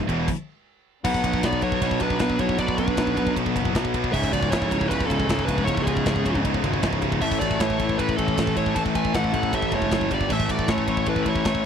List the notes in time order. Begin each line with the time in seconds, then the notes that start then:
Already playing: G#3 E4 C#5
0.09 E1 E2 B2 E3, kick, ride
0.28 kick, crash
1.04 B1 B2 F#3 B3 D4 B4 F#5, kick, crash
1.14 kick
1.24 B1 B2 F#3 B3, kick, ride
1.33 kick
1.43 B1 B2 F#3 B3 F#4 D5, kick, snare, ride
1.53 kick
1.62 B2 F#3 B3 F#4 C#5, kick, ride
1.72 kick
1.82 B1 B2 F#3 B3, kick, ride
1.91 kick
2.00 B1 B2 F#3 B3 D4 B4, kick, ride
2.10 kick
2.19 B1 B2 F#3 B3, kick, snare, ride
2.30 kick
2.39 B1 B2 F#3 B3 E4 C#5, kick, ride
2.49 kick
2.58 B1 B2 F#3 B3 F#4 D5, kick, ride
2.68 kick
2.78 B2 F#3 B3 D4 B4, kick, ride
2.88 kick
2.97 B1 B2 F#3 B3, kick, snare, ride
3.07 kick
3.17 B1 B2 F#3 B3, kick, ride
3.27 kick
3.36 B1 B2 F#3 B3, kick, ride
3.46 kick
3.56 F#1 B2 F#3 B3, kick, ride
3.65 kick
3.75 B1 B2 F#3 B3, kick, snare, ride
3.85 kick
3.94 B2 F#3 B3, kick, ride
4.04 kick
4.12 C#1 C#2 G#2 C#3 E3 E4 G#4 C#5 E5, kick, crash
4.23 kick
4.32 C#1 C#2 G#2 C#3 F#4 D5, kick, ride
4.42 kick
4.51 C#1 C#2 G#2 C#3 E4 C#5, kick, snare, ride
4.62 kick
4.71 C#2 G#2 C#3, kick, ride
4.81 kick
4.88 C#1 C#2 G#2 C#3 E4 B4, kick, ride
5.01 kick
5.07 C#1 C#2 G#2 C#3 C#4 A4, kick
5.11 ride
5.20 kick
5.29 C#1 C#2 G#2 C#3, kick, snare, ride
5.39 kick
5.45 C#1 C#2 G#2 C#3 D4 B4, kick, ride
5.58 kick
5.64 C#1 C#2 G#2 C#3 E4 C#5, kick
5.68 ride
5.77 kick
5.82 C#2 C#4 G#4
5.86 G#2 C#3, kick, ride
5.97 kick
6.06 C#1 C#2 G#2 C#3, kick, snare, ride
6.16 kick
6.25 C#1 C#2 G#2 C#3, kick, ride
6.35 kick
6.44 C#1 C#2 G#2 C#3, kick, ride
6.54 kick
6.63 G#1 C#2 G#2 C#3, kick, ride
6.74 kick
6.83 C#1 C#2 G#2 C#3, kick, snare, ride
6.93 kick
7.02 C#2 G#2 C#3, kick, ride
7.12 kick
7.21 A1 A2 E3 A3 A4 E5, kick, crash
7.31 kick
7.40 A1 A2 E3 A3 F#4 D5, kick, ride
7.51 kick
7.60 A1 A2 E3 A3 E4 C#5, kick, snare, ride
7.70 kick
7.79 A2 E3 A3, kick, ride
7.89 kick
7.99 A1 A2 E3 A3 E4 B4, kick, ride
8.09 kick
8.16 A1 A2 E3 A3 C#4 A4, kick, ride
8.28 kick
8.37 A1 A2 E3 A3, kick, snare, ride
8.47 kick
8.55 A1 A2 E3 A3 E4 C#5, kick, ride
8.66 kick
8.75 A1 A2 E3 A3 C#5 A5, kick, ride
8.86 kick
8.95 A2 E3 A3 B4 G#5, kick, ride
9.05 kick
9.14 A1 A2 E3 A3 A4 F#5, kick, snare, ride
9.24 kick
9.34 A1 A2 E3 A3, kick, ride
9.43 kick
9.53 A1 A2 E3 A3 A4 E5, kick, ride
9.62 kick
9.72 E1 A2 E3 A3 E4 C#5, kick, ride
9.82 kick
9.91 F#1 A2 E3 A3, kick, snare, ride
10.01 kick
10.11 G1 G2 D3 G3 D4 G4 D5, kick, ride
10.21 kick
10.30 A1 A2 E3 A3 E4 A4 C#5 E5, kick, crash
10.40 kick
10.49 A1 A2 E3 A3 F#4 D5, kick, ride
10.59 kick
10.68 A1 A2 E3 A3 E4 C#5, kick, snare, ride
10.78 kick
10.88 A2 E3 A3, kick, ride
10.97 kick
11.06 A1 A2 E3 A3 E4 B4, kick, ride
11.16 kick
11.25 A1 A2 E3 A3 E4 C#5, kick, ride
11.35 kick
11.45 A1 A2 E3 A3, kick, snare, ride
11.55 kick